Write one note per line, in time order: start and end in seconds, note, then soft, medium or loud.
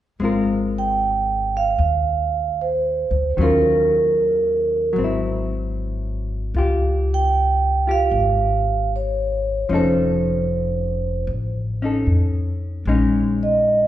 0.20 1.75 G#1 medium
0.20 3.37 G#3 soft
0.20 3.38 C4 soft
0.20 3.39 F4 soft
0.25 3.40 A#4 soft
0.78 1.57 G5 medium
1.57 2.64 F5 medium
1.78 3.07 D#2 medium
2.61 3.41 C5 medium
3.11 3.35 D2 medium
3.37 4.92 D#2 medium
3.37 4.96 D#3 soft
3.37 4.92 F#3 soft
3.37 4.97 C#4 soft
3.42 4.98 F4 soft
3.42 4.94 A#4 medium
4.93 6.50 G#1 medium
4.93 6.53 F#3 soft
4.98 6.55 C4 soft
5.04 6.56 E4 soft
6.54 8.08 C#2 medium
6.54 7.86 F4 soft
6.54 7.87 G4 medium
7.14 7.86 G5 medium
7.87 9.71 F4 soft
7.87 9.72 G4 soft
7.87 8.90 F5 medium
8.11 9.66 G#1 medium
8.96 9.75 C#5 medium
9.69 11.24 F1 medium
9.69 12.86 F3 soft
9.69 11.81 C#4 soft
9.69 11.83 D#4 soft
9.74 11.84 A4 soft
9.74 11.27 C5 medium
11.27 12.03 A1 medium
11.82 12.87 C#4 soft
11.82 12.88 D#4 soft
11.82 12.89 A4 soft
12.06 12.82 F2 soft
12.85 13.87 A#1 medium
12.85 13.87 G#3 soft
12.85 13.87 C#4 soft
12.85 13.87 D#4 soft
13.43 13.87 D#5 medium